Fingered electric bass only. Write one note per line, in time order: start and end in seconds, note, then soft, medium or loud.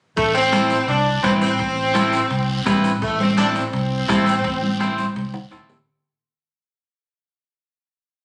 0.17 0.74 A1 medium
0.88 1.17 C2 medium
1.24 1.52 A1 medium
1.60 2.17 A1 medium
2.31 2.59 C2 medium
2.67 2.95 A1 medium
3.02 3.59 A1 loud
3.74 4.02 C2 medium
4.09 4.38 A1 medium
4.45 5.02 A1 medium
5.17 5.45 C2 loud
5.52 5.80 A1 medium